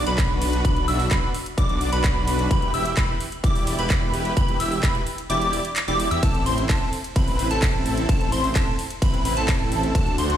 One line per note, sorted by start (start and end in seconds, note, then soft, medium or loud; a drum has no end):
0.07 0.62 B1 loud
0.07 0.62 D4 medium
0.07 0.62 F#4 medium
0.07 0.62 B4 loud
0.07 0.62 B5 medium
0.07 closed hi-hat medium
0.18 kick loud
0.18 clap loud
0.18 closed hi-hat medium
0.42 open hi-hat loud
0.53 closed hi-hat soft
0.65 0.86 B1 loud
0.65 0.85 D4 loud
0.65 0.85 F#4 medium
0.65 0.85 B4 loud
0.65 0.85 B5 loud
0.65 kick loud
0.65 closed hi-hat medium
0.76 closed hi-hat soft
0.88 1.09 B1 loud
0.88 1.06 D4 medium
0.88 1.06 F#4 medium
0.88 1.06 E5 medium
0.88 1.06 E6 medium
0.88 open hi-hat loud
1.00 open hi-hat medium
1.11 1.27 B1 loud
1.11 1.29 D4 medium
1.11 1.29 F#4 medium
1.11 1.29 B4 loud
1.11 1.29 B5 loud
1.11 kick loud
1.11 clap loud
1.11 closed hi-hat medium
1.34 open hi-hat loud
1.46 closed hi-hat medium
1.58 1.90 B1 loud
1.58 1.90 D4 loud
1.58 1.90 F#4 medium
1.58 1.90 D5 loud
1.58 1.90 D6 loud
1.58 kick loud
1.58 closed hi-hat medium
1.69 closed hi-hat soft
1.81 open hi-hat loud
1.93 2.48 B1 loud
1.93 2.48 D4 medium
1.93 2.48 F#4 medium
1.93 2.48 B4 loud
1.93 2.48 B5 loud
1.93 closed hi-hat medium
2.04 kick loud
2.04 clap loud
2.04 closed hi-hat medium
2.28 open hi-hat loud
2.39 closed hi-hat soft
2.51 2.72 E1 loud
2.51 2.71 E4 loud
2.51 2.71 G4 medium
2.51 2.71 B4 loud
2.51 2.71 B5 loud
2.51 kick loud
2.51 closed hi-hat medium
2.62 closed hi-hat soft
2.74 2.95 E1 loud
2.74 2.92 E4 medium
2.74 2.92 G4 medium
2.74 2.92 E5 medium
2.74 2.92 E6 medium
2.74 open hi-hat loud
2.85 closed hi-hat medium
2.97 3.13 E1 loud
2.97 3.16 E4 loud
2.97 3.16 G4 medium
2.97 3.16 B4 loud
2.97 3.15 B5 loud
2.97 kick loud
2.97 clap loud
2.97 closed hi-hat medium
3.20 open hi-hat loud
3.32 closed hi-hat medium
3.44 3.76 E1 medium
3.44 3.76 E4 loud
3.44 3.76 G4 medium
3.44 3.76 D5 loud
3.44 3.76 D6 loud
3.44 kick loud
3.44 closed hi-hat medium
3.55 open hi-hat medium
3.67 open hi-hat loud
3.79 4.34 E1 loud
3.79 4.34 E4 medium
3.79 4.34 G4 medium
3.79 4.34 B4 loud
3.79 4.34 B5 loud
3.79 closed hi-hat medium
3.90 kick loud
3.90 clap loud
3.90 closed hi-hat medium
4.14 open hi-hat loud
4.25 closed hi-hat medium
4.37 4.58 E1 loud
4.37 4.57 E4 loud
4.37 4.57 G4 medium
4.37 4.57 B4 loud
4.37 4.57 B5 loud
4.37 kick loud
4.37 closed hi-hat medium
4.48 closed hi-hat soft
4.60 4.81 E1 loud
4.60 4.78 E4 medium
4.60 4.78 G4 medium
4.60 4.78 E5 medium
4.60 4.78 E6 medium
4.60 open hi-hat loud
4.72 open hi-hat medium
4.83 4.99 E1 loud
4.83 5.02 E4 medium
4.83 5.02 G4 medium
4.83 5.02 B4 loud
4.83 5.01 B5 loud
4.83 kick loud
4.83 clap loud
4.83 closed hi-hat medium
4.95 closed hi-hat soft
5.07 open hi-hat loud
5.18 closed hi-hat medium
5.30 5.60 E1 loud
5.30 5.62 E4 loud
5.30 5.62 G4 medium
5.30 5.62 D5 loud
5.30 5.62 D6 loud
5.30 closed hi-hat medium
5.41 closed hi-hat soft
5.53 open hi-hat loud
5.65 closed hi-hat medium
5.76 clap loud
5.76 closed hi-hat medium
5.88 6.09 E1 loud
5.88 6.08 E4 medium
5.88 6.08 G4 medium
5.88 6.08 D5 medium
5.88 6.08 D6 loud
5.88 closed hi-hat soft
6.00 open hi-hat loud
6.11 6.20 E2 loud
6.11 6.20 E4 medium
6.11 6.20 G4 medium
6.11 6.20 E5 medium
6.11 6.20 E6 loud
6.11 closed hi-hat medium
6.23 6.44 A1 loud
6.23 6.43 C4 loud
6.23 6.43 E4 medium
6.23 6.43 A4 loud
6.23 6.43 A5 loud
6.23 kick loud
6.23 closed hi-hat medium
6.23 ride medium
6.35 closed hi-hat soft
6.46 6.67 A1 loud
6.46 6.64 C4 medium
6.46 6.64 E4 medium
6.46 6.64 C5 medium
6.46 6.64 C6 medium
6.46 open hi-hat loud
6.58 closed hi-hat medium
6.69 6.85 A1 loud
6.69 6.88 C4 medium
6.69 6.88 E4 medium
6.69 6.88 A4 loud
6.69 6.88 A5 loud
6.69 kick loud
6.69 clap loud
6.69 closed hi-hat medium
6.69 ride medium
6.93 open hi-hat loud
7.04 closed hi-hat medium
7.16 7.48 A1 loud
7.16 7.48 C4 loud
7.16 7.48 E4 medium
7.16 7.48 B4 loud
7.16 7.48 B5 loud
7.16 kick loud
7.16 closed hi-hat medium
7.16 ride medium
7.28 open hi-hat medium
7.39 open hi-hat loud
7.51 8.07 A1 loud
7.51 8.06 C4 medium
7.51 8.06 E4 medium
7.51 8.06 A4 loud
7.51 8.06 A5 loud
7.51 closed hi-hat medium
7.62 kick loud
7.62 clap loud
7.62 closed hi-hat medium
7.62 ride medium
7.86 open hi-hat loud
7.97 closed hi-hat medium
8.09 8.30 A1 medium
8.09 8.29 C4 loud
8.09 8.29 E4 medium
8.09 8.29 A4 loud
8.09 8.29 A5 loud
8.09 kick loud
8.09 closed hi-hat medium
8.09 ride medium
8.21 closed hi-hat soft
8.32 8.53 A1 medium
8.32 8.50 C4 medium
8.32 8.50 E4 medium
8.32 8.50 C5 medium
8.32 8.50 C6 medium
8.32 open hi-hat loud
8.44 open hi-hat medium
8.55 8.71 A1 loud
8.55 8.74 C4 medium
8.55 8.74 E4 medium
8.55 8.74 A4 loud
8.55 8.74 A5 loud
8.55 kick loud
8.55 clap loud
8.55 closed hi-hat medium
8.55 ride medium
8.79 open hi-hat loud
8.90 closed hi-hat medium
9.02 9.34 A1 medium
9.02 9.34 C4 loud
9.02 9.34 E4 medium
9.02 9.34 B4 loud
9.02 9.34 B5 loud
9.02 kick loud
9.02 closed hi-hat medium
9.02 ride medium
9.14 closed hi-hat soft
9.25 open hi-hat loud
9.37 9.93 A1 medium
9.37 9.92 C4 medium
9.37 9.92 E4 medium
9.37 9.92 A4 loud
9.37 9.92 A5 loud
9.37 closed hi-hat medium
9.48 kick loud
9.48 clap loud
9.48 closed hi-hat medium
9.48 ride medium
9.72 open hi-hat loud
9.83 closed hi-hat medium
9.95 10.16 D2 loud
9.95 10.15 D4 loud
9.95 10.15 F#4 loud
9.95 10.15 A4 loud
9.95 10.15 A5 loud
9.95 kick loud
9.95 closed hi-hat medium
9.95 ride medium
10.07 closed hi-hat soft
10.18 10.37 D2 loud
10.18 10.36 D4 medium
10.18 10.36 F#4 medium
10.18 10.36 C5 medium
10.18 10.37 C6 medium
10.18 open hi-hat loud
10.30 closed hi-hat medium